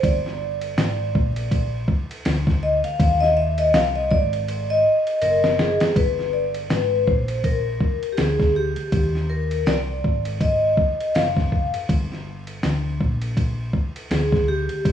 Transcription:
0.03 G1 D5, kick, ride
0.26 snare
0.61 ride
0.78 G#1, snare, hi-hat pedal, ride
1.15 A#1, kick
1.36 ride
1.51 kick, ride
1.88 kick
2.11 ride
2.25 D2, snare, hi-hat pedal, ride
2.47 kick, snare
2.63 D#5
2.84 F5, muted picked electric bass stroke, ride
3.00 D#2, kick, ride
3.21 D#5, snare
3.37 E5
3.58 D#5, ride
3.74 C2 F5, snare, hi-hat pedal, ride
3.96 D#5
4.11 G#1 D5, kick
4.33 ride
4.48 ride
4.70 D#5
5.07 ride
5.22 F#1 A#4, hi-hat pedal, ride
5.44 snare
5.59 G#4, snare
5.80 snare, ride
5.96 G1 B4, kick, ride
6.19 snare
6.33 D5
6.54 ride
6.70 G#1 B4, snare, hi-hat pedal, ride
7.07 A#1 C5, kick
7.28 ride
7.44 A#4, kick, ride
7.80 kick
8.03 ride
8.12 G4
8.17 D2 G#4, snare, hi-hat pedal, ride
8.40 kick, snare
8.56 G4
8.76 muted picked electric bass stroke, ride
8.92 D#2, kick, ride
9.15 snare
9.30 A#4
9.51 ride
9.66 C2 D5, snare, hi-hat pedal, ride
10.04 G#1, kick
10.25 ride
10.41 D#5, kick, ride
10.77 kick
11.01 ride
11.15 F#1 F5, snare, hi-hat pedal, ride
11.37 kick, snare
11.52 kick
11.74 muted picked electric bass stroke, ride
11.89 G1, kick, ride
12.12 snare
12.47 ride
12.63 D2, snare, hi-hat pedal, ride
13.01 A#1, kick
13.22 ride
13.37 kick, ride
13.73 kick
13.96 ride
14.11 D2 G#4, snare, hi-hat pedal, ride
14.32 kick, snare
14.48 G4
14.69 muted picked electric bass stroke, ride
14.85 kick, ride

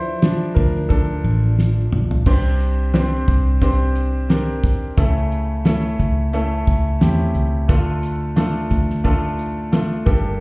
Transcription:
Already playing: F3 D4 E4 A4 C5
0.22 F3 D4, snare, ride
0.54 D2 D4 A#4, kick, ride
0.89 D4 A4, kick, ride
1.24 A1, ride
1.59 snare
1.92 A#1, mid tom
2.11 floor tom
2.26 C2 C3 C4 D4 G4 C5, kick, crash
2.60 closed hi-hat
2.94 C4 D4 G4 C5, snare, closed hi-hat
3.28 C2, kick, closed hi-hat
3.61 C4 D4 G4 C5, kick, closed hi-hat
3.95 closed hi-hat
4.29 C4 D4 G4 A#4, snare, closed hi-hat
4.63 kick, closed hi-hat
4.97 C#2 C#3 A3 C#4 E4 A4, kick, closed hi-hat
5.32 closed hi-hat
5.65 A3 C#4 E4 A4, snare, closed hi-hat
5.99 C#2, kick, closed hi-hat
6.33 A3 C#4 E4 A4, closed hi-hat
6.67 C#2, kick, closed hi-hat
7.01 E2 A3 C4 E4 G4, snare, closed hi-hat
7.08 C#4
7.35 C#2, closed hi-hat
7.68 D2 D3 A3 D4 F4 A4, kick, closed hi-hat
8.03 closed hi-hat
8.36 A3 D4 F4 A4, snare, closed hi-hat
8.70 D2, kick, closed hi-hat
8.90 snare
9.04 A3 D4 F4 A4, kick, closed hi-hat
9.39 closed hi-hat
9.72 A3 D4 F4 A4, snare, closed hi-hat
10.06 G1 G2 A#3 D4 G4 A4, kick, closed hi-hat

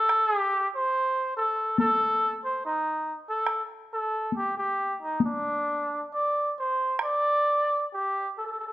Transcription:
Already playing: A4
0.09 taiko rim
0.39 G4
0.76 C5
1.37 A4
1.78 A4, taiko high
2.44 C5
2.66 D#4
3.30 A4
3.47 taiko rim
3.94 A4
4.32 taiko high
4.37 G4
4.58 G4
5.02 D#4
5.20 taiko high
5.26 D4
6.14 D5
6.59 C5
6.99 taiko rim
7.04 D5
7.94 G4
8.38 A4
8.46 A4
8.52 A4
8.60 A4
8.67 A4

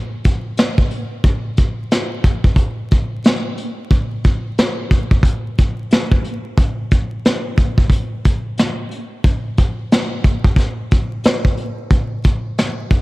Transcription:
0.24 kick, closed hi-hat
0.57 snare, closed hi-hat
0.78 kick
0.91 closed hi-hat
1.24 kick, closed hi-hat
1.57 kick, closed hi-hat
1.91 snare, closed hi-hat
2.24 kick, closed hi-hat
2.44 kick
2.56 kick, closed hi-hat
2.91 kick, closed hi-hat
3.24 snare, closed hi-hat
3.57 closed hi-hat
3.91 kick, closed hi-hat
4.24 kick, closed hi-hat
4.58 snare, closed hi-hat
4.91 kick, closed hi-hat
5.11 kick
5.23 kick, closed hi-hat
5.58 kick, closed hi-hat
5.91 snare, closed hi-hat
6.12 kick
6.24 closed hi-hat
6.58 kick, closed hi-hat
6.91 kick, closed hi-hat
7.25 snare, closed hi-hat
7.58 kick, closed hi-hat
7.78 kick
7.90 kick, closed hi-hat
8.25 kick, closed hi-hat
8.58 snare, closed hi-hat
8.91 closed hi-hat
9.24 kick, closed hi-hat
9.57 kick, closed hi-hat
9.92 snare, closed hi-hat
10.24 kick, closed hi-hat
10.44 kick
10.56 kick, snare, closed hi-hat
10.91 kick, closed hi-hat
11.24 snare, closed hi-hat
11.45 kick
11.57 closed hi-hat
11.91 kick, closed hi-hat
12.24 kick, closed hi-hat
12.58 snare, closed hi-hat
12.90 kick, closed hi-hat

